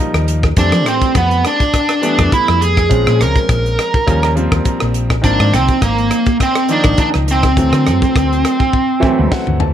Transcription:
Already playing: F3 G3 A#3 D#4
0.14 D#2, cross-stick, closed hi-hat
0.28 closed hi-hat
0.43 kick, cross-stick
0.57 F2 E3 G3 A3 C4 D4, kick, closed hi-hat
0.72 F3, cross-stick, closed hi-hat
0.86 A2 C4, cross-stick, closed hi-hat
1.02 kick, closed hi-hat
1.15 F2 B3, kick, cross-stick, closed hi-hat
1.31 closed hi-hat
1.45 D4, cross-stick, closed hi-hat
1.60 kick, closed hi-hat
1.74 kick, cross-stick, closed hi-hat
1.89 cross-stick, closed hi-hat
2.01 E3 G3 A3 B3, closed hi-hat
2.18 F2, kick, cross-stick, closed hi-hat
2.32 E4, muted fingered electric bass stroke, kick, closed hi-hat
2.48 F2, cross-stick
2.61 G#4, closed hi-hat
2.77 kick, cross-stick, closed hi-hat
2.89 A#1 F3 G#3 C4 C#4, kick, closed hi-hat
3.07 A#2, cross-stick, closed hi-hat
3.21 C#2 A#4, cross-stick, closed hi-hat
3.35 kick, closed hi-hat
3.49 A#1, kick, cross-stick, closed hi-hat
3.66 closed hi-hat
3.79 cross-stick, closed hi-hat
3.94 kick
4.07 D#2 F3 G3 A#3 C#4, kick, cross-stick, closed hi-hat
4.23 cross-stick, closed hi-hat
4.35 F3 G3 A#3 C4, closed hi-hat
4.52 D#2, kick, cross-stick, closed hi-hat
4.65 A#5, kick, closed hi-hat
4.80 A#1, cross-stick, closed hi-hat
4.94 closed hi-hat
5.10 kick, cross-stick
5.22 G#1 D#3 F3 A#3 C4 D4, kick, closed hi-hat
5.40 G#2, cross-stick, closed hi-hat
5.53 C2 C4, cross-stick, closed hi-hat
5.68 kick, closed hi-hat
5.82 G#1 A#3, kick, cross-stick, closed hi-hat
5.98 closed hi-hat
6.11 cross-stick, closed hi-hat
6.26 kick, closed hi-hat
6.40 C4, kick, cross-stick, closed hi-hat
6.55 cross-stick, closed hi-hat
6.69 D#3 F3 A#3 D4 D#4, closed hi-hat
6.84 G#1, kick, cross-stick, closed hi-hat
6.98 D4, kick, closed hi-hat
7.14 C#2, cross-stick
7.28 C4, closed hi-hat
7.43 kick, cross-stick, closed hi-hat
7.56 D2 E3 F#3 A3 C4, kick, closed hi-hat
7.72 D3, cross-stick, closed hi-hat
7.87 F#2, cross-stick, closed hi-hat
8.02 kick, closed hi-hat
8.16 D2, kick, cross-stick, closed hi-hat
8.33 closed hi-hat
8.45 cross-stick, closed hi-hat
8.60 kick
8.73 kick
9.00 E3 F#3 A3 C4 E5, kick
9.19 D2
9.31 F#5, kick, snare
9.47 D2, mid tom
9.60 A5, floor tom

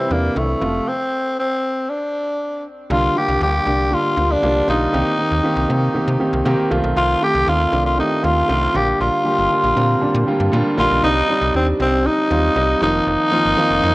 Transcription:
Already playing: C3 E3 G3 C4 E4
0.09 E2 C3 E3 G3 A#3 D4
0.35 C2 C3 E3 G3 A3 E4
0.60 F1 C3 F3 A3 F4
0.88 C4
1.39 C4
1.90 D4
2.90 C2 D3 G3 A#3 F4
3.15 D3 G3 A#3 F4 G4
3.28 C2
3.41 D2 D3 G3 A#3 F4 G4
3.65 C2 D3 G3 A#3 D4
3.91 D3 G3 A#3 F4
4.16 D2 D3 G3 A#3 F4
4.32 D4
4.42 C2 D3 G3 A#3 F4
4.68 B1 D3 G3 A#3 D#4 F4
4.93 C2 D#3 A#3 C4 G4
5.18 D#3 A#3 C4 G4
5.31 D#2
5.43 D#3 A#3 C4 G4
5.57 C2
5.69 C3 D#3 A#3 C4 G4
5.94 C3 D#3 A#3 C4 G4
6.08 C3
6.20 D#3 A#3 C4 G4
6.33 C2
6.45 C3 D#3 A#3 C4 G4
6.70 C2 D#3 A3 C4 F4
6.84 B1
6.97 C2 F4
7.21 D#3 A3 C4 F4 G4
7.35 C2
7.47 D#2 D#3 A3 C4 F4
7.72 C2 D#3 A3 C4 D4
7.86 F4
7.98 D#3 A3 C4 D#4 G4
8.23 D#2 D#3 A3 C4 F4
8.48 C2 D#3 A3 C4 F4
8.74 A#1 D3 G3 A#3 F4 G4
9.00 A#1 F4
9.24 D3 G3 A#3 G4
9.39 G1
9.50 D3 G3 A#3 F4
9.64 A#1
9.76 A#2 D3 G3 A#3 C4 A#5
10.01 A#2 D3 G3 A#3 D4 A5
10.14 A#2
10.27 D3 G3 A#3 F4 G5
10.40 G2
10.52 A#2 D3 G3 A#3 F4 F5
10.77 A#1 D3 G3 A#3 F4 F5
10.91 B1
11.03 C2 G3 C4 D#4
11.29 G3 C4 D#4
11.41 C2
11.54 D#2 G3 C4 D4
11.79 C2 G3 C4 D#4
12.05 G3 C4 D#4
12.30 D#2 G3 C4 F4
12.55 C2 G3 C4 D#4
12.81 F1 D#3 F3 A#3 C4 D#4 F4
13.07 F1
13.32 D#3 F3 A#3 C4 F4
13.45 G1
13.57 D#3 F3 A#3 C4 F4
13.71 F1
13.83 F2 D#3 F3 A#3 C4 F4

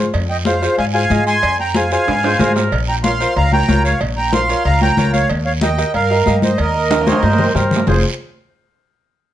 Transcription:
0.14 F2, cowbell, long guiro
0.29 D#5 G5, high conga
0.45 F4 G#4 C5 F5, high conga, short guiro
0.62 F4 G#4 C5, short guiro
0.78 G#2 F5 G#5, cowbell, high conga, long guiro
0.94 F4 G#4 C5 F5 G#5
1.10 G#2 F4 G#4 D#5, high conga, short guiro
1.27 G#5 C6, short guiro
1.43 F2, cowbell, long guiro
1.59 G5 A#5, high conga
1.74 F4 G#4 C5 F5 G#5, high conga, short guiro
1.91 F4 G#4 C5 F5 G#5, short guiro
2.07 G#2, cowbell, high conga, high timbale, long guiro
2.23 F4 G#4 C5, high timbale
2.39 G#2 F4 G#4 A#4 C5, high conga, low conga, low timbale, short guiro
2.56 A#4, low timbale, short guiro
2.72 A#1, cowbell, long guiro
2.88 G5 A#5, high conga
3.04 F4 A#4 C#5 F5 C6, high conga, short guiro
3.20 F4 A#4 C5, short guiro
3.36 C#2 F5 A#5, cowbell, high conga, long guiro
3.52 F4 A#4 C#5 G5 A#5, high conga
3.68 C#2 F4 A#4 C#5, high conga, low timbale, short guiro
3.85 C#5 F5, short guiro
4.01 A#1, cowbell, long guiro
4.16 G5 A#5, high conga
4.33 F4 A#4 C5 F5 C6, high conga, short guiro
4.49 F4 A#4 C#5, short guiro
4.65 C#2 F5 A#5, cowbell, high conga, long guiro
4.81 F4 A#4 C#5 G5 A#5, high conga
4.97 C#2 F4 A#4 C#5, high conga, low conga, short guiro
5.13 C#5 F5, high conga, short guiro
5.29 D#2, cowbell, long guiro
5.45 C#5 F5, high conga
5.61 G4 A#4 D#5 G5, high conga, short guiro
5.78 G4 A#4 D#5, short guiro
5.94 G2 A#4 F5, cowbell, high conga, long guiro
6.10 G4 A#4 D#5
6.26 G2 G4 A#4 D#5, high conga, short guiro
6.42 C5 D#5, high conga, short guiro
6.58 D#2 A#4 D#5, cowbell, long guiro
6.74 high conga
6.90 G4 A#4 D#5, high conga, high timbale, short guiro
7.01 high timbale
7.06 G4 A#4 C5 C#5, high conga, short guiro
7.12 high timbale
7.23 G2 C5, cowbell, high conga, low timbale, long guiro
7.33 low timbale
7.38 G4 A#4 C5, low conga
7.44 low timbale
7.54 G2 G4 A#4 C5, low conga, low timbale, short guiro
7.71 low conga, short guiro
7.76 low timbale
7.87 F1 F4 G#4 C5, low conga, low timbale, long guiro

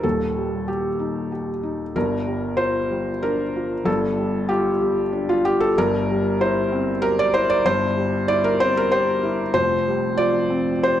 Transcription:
Already playing: D#4
0.03 D#1 D#2 A4
0.36 G3
0.68 G4
0.99 D#4
1.32 G4
1.63 D#4
1.96 G1 G2 A#4
2.27 G3
2.57 F4 C5
2.91 G3
3.23 D4 A#4
3.56 F4
3.84 G1 G2 A4
4.18 G3
4.49 F4 G4
4.81 G3
5.13 D4
5.29 F4
5.45 F4 G4
5.60 A4
5.77 G1 G2 A#4
6.11 G3
6.41 E4 C5
6.72 C4
7.02 G4 A#4
7.19 D5
7.34 E4 C5
7.50 D5
7.65 G1 G2 C5
7.97 G3
8.28 E4 D5
8.44 A#4
8.60 C4 C5
8.77 A#4
8.92 G4 C5
9.23 E4
9.54 F1 F2 C5
9.88 G3
10.17 F4 D5
10.50 C4
10.83 G4 C5

